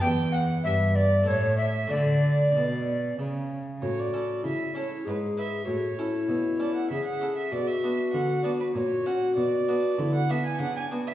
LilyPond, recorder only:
\new Staff \with { instrumentName = "Recorder" } { \time 3/4 \key d \major \tempo 4 = 97 g''8 fis''8 e''8 d''8 cis''8 e''8 | d''2 r4 | \key a \major fis'4 e'4 gis'4 | fis'8 e'4. gis'4 |
fis'2 fis'4~ | fis'4 e'8 r8 d'4 | }